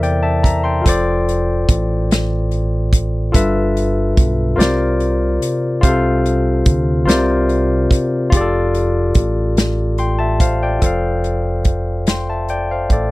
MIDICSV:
0, 0, Header, 1, 4, 480
1, 0, Start_track
1, 0, Key_signature, -1, "major"
1, 0, Tempo, 831025
1, 492, Time_signature, 6, 3, 24, 8
1, 7572, End_track
2, 0, Start_track
2, 0, Title_t, "Tine electric piano"
2, 0, Program_c, 0, 4
2, 0, Control_c, 0, 64, 127
2, 0, Note_on_c, 0, 48, 69
2, 0, Note_on_c, 0, 64, 68
2, 0, Note_on_c, 0, 69, 56
2, 0, Note_on_c, 0, 70, 46
2, 0, Note_on_c, 0, 72, 67
2, 0, Note_on_c, 0, 74, 76
2, 0, Note_on_c, 0, 76, 58
2, 17, Note_on_c, 0, 79, 65
2, 19, Note_off_c, 0, 74, 0
2, 19, Note_on_c, 0, 74, 52
2, 129, Note_off_c, 0, 79, 0
2, 130, Note_off_c, 0, 74, 0
2, 131, Note_on_c, 0, 81, 67
2, 133, Note_off_c, 0, 76, 0
2, 133, Note_on_c, 0, 76, 53
2, 245, Note_off_c, 0, 81, 0
2, 247, Note_off_c, 0, 76, 0
2, 251, Note_on_c, 0, 82, 65
2, 254, Note_on_c, 0, 76, 51
2, 365, Note_off_c, 0, 82, 0
2, 367, Note_off_c, 0, 76, 0
2, 368, Note_on_c, 0, 84, 62
2, 375, Note_on_c, 0, 79, 47
2, 459, Note_off_c, 0, 64, 0
2, 472, Note_on_c, 0, 65, 66
2, 486, Note_off_c, 0, 69, 0
2, 486, Note_on_c, 0, 69, 63
2, 498, Control_c, 0, 64, 0
2, 501, Note_off_c, 0, 72, 0
2, 501, Note_on_c, 0, 72, 62
2, 503, Note_off_c, 0, 48, 0
2, 503, Note_off_c, 0, 70, 0
2, 513, Note_on_c, 0, 74, 76
2, 582, Control_c, 0, 64, 127
2, 597, Note_off_c, 0, 84, 0
2, 601, Note_off_c, 0, 79, 0
2, 1895, Note_off_c, 0, 65, 0
2, 1902, Note_off_c, 0, 69, 0
2, 1910, Note_off_c, 0, 72, 0
2, 1916, Note_off_c, 0, 74, 0
2, 1918, Note_on_c, 0, 65, 70
2, 1925, Note_on_c, 0, 69, 69
2, 1930, Note_on_c, 0, 43, 72
2, 1933, Note_on_c, 0, 71, 65
2, 1936, Control_c, 0, 64, 0
2, 1938, Note_on_c, 0, 76, 77
2, 2050, Control_c, 0, 64, 127
2, 2625, Note_off_c, 0, 43, 0
2, 2627, Note_off_c, 0, 65, 0
2, 2634, Note_on_c, 0, 65, 69
2, 2638, Note_on_c, 0, 70, 64
2, 2643, Note_on_c, 0, 48, 70
2, 2645, Note_off_c, 0, 69, 0
2, 2645, Note_on_c, 0, 72, 65
2, 2649, Note_off_c, 0, 71, 0
2, 2652, Note_off_c, 0, 76, 0
2, 2652, Note_on_c, 0, 74, 80
2, 2655, Control_c, 0, 64, 0
2, 2754, Control_c, 0, 64, 127
2, 3341, Note_off_c, 0, 48, 0
2, 3349, Note_off_c, 0, 65, 0
2, 3356, Note_on_c, 0, 65, 76
2, 3361, Note_off_c, 0, 72, 0
2, 3361, Note_on_c, 0, 67, 55
2, 3362, Note_off_c, 0, 70, 0
2, 3366, Note_on_c, 0, 48, 72
2, 3368, Note_on_c, 0, 72, 69
2, 3369, Note_off_c, 0, 74, 0
2, 3374, Control_c, 0, 64, 0
2, 3374, Note_on_c, 0, 77, 81
2, 3399, Note_on_c, 0, 69, 64
2, 3401, Note_off_c, 0, 67, 0
2, 3489, Control_c, 0, 64, 127
2, 4063, Note_off_c, 0, 48, 0
2, 4068, Note_off_c, 0, 65, 0
2, 4075, Note_on_c, 0, 65, 75
2, 4080, Note_off_c, 0, 72, 0
2, 4083, Note_on_c, 0, 70, 62
2, 4087, Note_on_c, 0, 48, 70
2, 4087, Note_on_c, 0, 72, 69
2, 4090, Note_off_c, 0, 77, 0
2, 4094, Control_c, 0, 64, 0
2, 4095, Note_on_c, 0, 74, 79
2, 4102, Note_off_c, 0, 69, 0
2, 4184, Control_c, 0, 64, 127
2, 4784, Note_off_c, 0, 48, 0
2, 4787, Note_off_c, 0, 65, 0
2, 4794, Note_on_c, 0, 65, 76
2, 4805, Note_off_c, 0, 70, 0
2, 4807, Note_off_c, 0, 72, 0
2, 4809, Note_on_c, 0, 67, 65
2, 4811, Note_off_c, 0, 74, 0
2, 4814, Control_c, 0, 64, 0
2, 4821, Note_on_c, 0, 68, 55
2, 4834, Note_on_c, 0, 74, 81
2, 4851, Note_off_c, 0, 68, 0
2, 4857, Note_on_c, 0, 69, 69
2, 4902, Control_c, 0, 64, 127
2, 5763, Note_off_c, 0, 74, 0
2, 5769, Note_on_c, 0, 84, 58
2, 5774, Note_on_c, 0, 79, 50
2, 5883, Note_off_c, 0, 84, 0
2, 5884, Note_on_c, 0, 81, 65
2, 5886, Note_off_c, 0, 79, 0
2, 5892, Note_on_c, 0, 76, 57
2, 6000, Note_off_c, 0, 81, 0
2, 6005, Note_off_c, 0, 76, 0
2, 6009, Note_on_c, 0, 77, 65
2, 6013, Note_on_c, 0, 72, 54
2, 6123, Note_off_c, 0, 77, 0
2, 6126, Note_off_c, 0, 72, 0
2, 6138, Note_on_c, 0, 79, 59
2, 6141, Note_on_c, 0, 74, 52
2, 6220, Note_off_c, 0, 65, 0
2, 6227, Note_off_c, 0, 67, 0
2, 6233, Note_on_c, 0, 65, 56
2, 6240, Note_off_c, 0, 69, 0
2, 6247, Note_on_c, 0, 69, 54
2, 6256, Control_c, 0, 64, 0
2, 6259, Note_on_c, 0, 72, 53
2, 6273, Note_on_c, 0, 77, 62
2, 6358, Control_c, 0, 64, 127
2, 6363, Note_off_c, 0, 79, 0
2, 6364, Note_off_c, 0, 74, 0
2, 6956, Note_off_c, 0, 69, 0
2, 6962, Note_off_c, 0, 72, 0
2, 6970, Note_off_c, 0, 77, 0
2, 6981, Note_on_c, 0, 84, 49
2, 6986, Note_on_c, 0, 79, 40
2, 7091, Note_off_c, 0, 84, 0
2, 7094, Note_off_c, 0, 79, 0
2, 7102, Note_on_c, 0, 76, 41
2, 7102, Note_on_c, 0, 81, 49
2, 7212, Note_off_c, 0, 76, 0
2, 7212, Note_off_c, 0, 81, 0
2, 7219, Note_on_c, 0, 79, 57
2, 7222, Note_on_c, 0, 74, 48
2, 7331, Note_off_c, 0, 79, 0
2, 7332, Note_off_c, 0, 74, 0
2, 7343, Note_on_c, 0, 77, 53
2, 7347, Note_on_c, 0, 72, 43
2, 7453, Note_off_c, 0, 77, 0
2, 7455, Note_off_c, 0, 72, 0
2, 7466, Note_on_c, 0, 74, 55
2, 7471, Note_on_c, 0, 69, 45
2, 7572, Note_off_c, 0, 65, 0
2, 7572, Note_off_c, 0, 69, 0
2, 7572, Note_off_c, 0, 74, 0
2, 7572, End_track
3, 0, Start_track
3, 0, Title_t, "Fingered electric bass"
3, 0, Program_c, 1, 33
3, 0, Note_on_c, 1, 40, 97
3, 469, Note_off_c, 1, 40, 0
3, 494, Note_on_c, 1, 29, 88
3, 948, Note_off_c, 1, 29, 0
3, 974, Note_on_c, 1, 33, 94
3, 1907, Note_off_c, 1, 33, 0
3, 1930, Note_on_c, 1, 31, 94
3, 2385, Note_off_c, 1, 31, 0
3, 2409, Note_on_c, 1, 35, 90
3, 2629, Note_off_c, 1, 35, 0
3, 2648, Note_on_c, 1, 36, 92
3, 3104, Note_off_c, 1, 36, 0
3, 3367, Note_on_c, 1, 36, 98
3, 3824, Note_off_c, 1, 36, 0
3, 3848, Note_on_c, 1, 38, 85
3, 4068, Note_off_c, 1, 38, 0
3, 4080, Note_on_c, 1, 36, 96
3, 4540, Note_off_c, 1, 36, 0
3, 4806, Note_on_c, 1, 29, 94
3, 5264, Note_off_c, 1, 29, 0
3, 5286, Note_on_c, 1, 33, 93
3, 6226, Note_off_c, 1, 33, 0
3, 6249, Note_on_c, 1, 29, 83
3, 7430, Note_off_c, 1, 29, 0
3, 7447, Note_on_c, 1, 33, 68
3, 7572, Note_off_c, 1, 33, 0
3, 7572, End_track
4, 0, Start_track
4, 0, Title_t, "Drums"
4, 19, Note_on_c, 9, 42, 42
4, 76, Note_off_c, 9, 42, 0
4, 254, Note_on_c, 9, 36, 89
4, 262, Note_on_c, 9, 42, 59
4, 312, Note_off_c, 9, 36, 0
4, 319, Note_off_c, 9, 42, 0
4, 495, Note_on_c, 9, 36, 99
4, 497, Note_on_c, 9, 42, 96
4, 553, Note_off_c, 9, 36, 0
4, 555, Note_off_c, 9, 42, 0
4, 743, Note_on_c, 9, 42, 52
4, 801, Note_off_c, 9, 42, 0
4, 974, Note_on_c, 9, 36, 95
4, 975, Note_on_c, 9, 42, 64
4, 1032, Note_off_c, 9, 36, 0
4, 1032, Note_off_c, 9, 42, 0
4, 1221, Note_on_c, 9, 42, 81
4, 1226, Note_on_c, 9, 38, 101
4, 1278, Note_off_c, 9, 42, 0
4, 1284, Note_off_c, 9, 38, 0
4, 1452, Note_on_c, 9, 42, 42
4, 1510, Note_off_c, 9, 42, 0
4, 1690, Note_on_c, 9, 36, 93
4, 1693, Note_on_c, 9, 42, 66
4, 1748, Note_off_c, 9, 36, 0
4, 1751, Note_off_c, 9, 42, 0
4, 1931, Note_on_c, 9, 36, 106
4, 1932, Note_on_c, 9, 42, 96
4, 1989, Note_off_c, 9, 36, 0
4, 1989, Note_off_c, 9, 42, 0
4, 2177, Note_on_c, 9, 42, 53
4, 2235, Note_off_c, 9, 42, 0
4, 2411, Note_on_c, 9, 36, 93
4, 2411, Note_on_c, 9, 42, 62
4, 2468, Note_off_c, 9, 36, 0
4, 2469, Note_off_c, 9, 42, 0
4, 2658, Note_on_c, 9, 42, 85
4, 2664, Note_on_c, 9, 38, 109
4, 2716, Note_off_c, 9, 42, 0
4, 2721, Note_off_c, 9, 38, 0
4, 2890, Note_on_c, 9, 42, 44
4, 2948, Note_off_c, 9, 42, 0
4, 3132, Note_on_c, 9, 42, 67
4, 3189, Note_off_c, 9, 42, 0
4, 3369, Note_on_c, 9, 36, 107
4, 3369, Note_on_c, 9, 42, 93
4, 3426, Note_off_c, 9, 36, 0
4, 3427, Note_off_c, 9, 42, 0
4, 3614, Note_on_c, 9, 42, 56
4, 3672, Note_off_c, 9, 42, 0
4, 3845, Note_on_c, 9, 42, 66
4, 3847, Note_on_c, 9, 36, 102
4, 3902, Note_off_c, 9, 42, 0
4, 3905, Note_off_c, 9, 36, 0
4, 4092, Note_on_c, 9, 42, 85
4, 4098, Note_on_c, 9, 38, 99
4, 4150, Note_off_c, 9, 42, 0
4, 4156, Note_off_c, 9, 38, 0
4, 4328, Note_on_c, 9, 42, 44
4, 4386, Note_off_c, 9, 42, 0
4, 4567, Note_on_c, 9, 36, 94
4, 4574, Note_on_c, 9, 42, 63
4, 4625, Note_off_c, 9, 36, 0
4, 4632, Note_off_c, 9, 42, 0
4, 4808, Note_on_c, 9, 36, 110
4, 4809, Note_on_c, 9, 42, 91
4, 4866, Note_off_c, 9, 36, 0
4, 4866, Note_off_c, 9, 42, 0
4, 5052, Note_on_c, 9, 42, 54
4, 5110, Note_off_c, 9, 42, 0
4, 5282, Note_on_c, 9, 42, 64
4, 5287, Note_on_c, 9, 36, 92
4, 5340, Note_off_c, 9, 42, 0
4, 5345, Note_off_c, 9, 36, 0
4, 5529, Note_on_c, 9, 42, 78
4, 5534, Note_on_c, 9, 38, 100
4, 5586, Note_off_c, 9, 42, 0
4, 5592, Note_off_c, 9, 38, 0
4, 5765, Note_on_c, 9, 42, 44
4, 5823, Note_off_c, 9, 42, 0
4, 6007, Note_on_c, 9, 36, 94
4, 6010, Note_on_c, 9, 42, 64
4, 6065, Note_off_c, 9, 36, 0
4, 6068, Note_off_c, 9, 42, 0
4, 6248, Note_on_c, 9, 42, 84
4, 6249, Note_on_c, 9, 36, 81
4, 6306, Note_off_c, 9, 42, 0
4, 6307, Note_off_c, 9, 36, 0
4, 6493, Note_on_c, 9, 42, 42
4, 6551, Note_off_c, 9, 42, 0
4, 6726, Note_on_c, 9, 42, 53
4, 6731, Note_on_c, 9, 36, 78
4, 6784, Note_off_c, 9, 42, 0
4, 6788, Note_off_c, 9, 36, 0
4, 6970, Note_on_c, 9, 42, 71
4, 6976, Note_on_c, 9, 38, 83
4, 7028, Note_off_c, 9, 42, 0
4, 7034, Note_off_c, 9, 38, 0
4, 7212, Note_on_c, 9, 42, 37
4, 7269, Note_off_c, 9, 42, 0
4, 7451, Note_on_c, 9, 36, 76
4, 7451, Note_on_c, 9, 42, 53
4, 7509, Note_off_c, 9, 36, 0
4, 7509, Note_off_c, 9, 42, 0
4, 7572, End_track
0, 0, End_of_file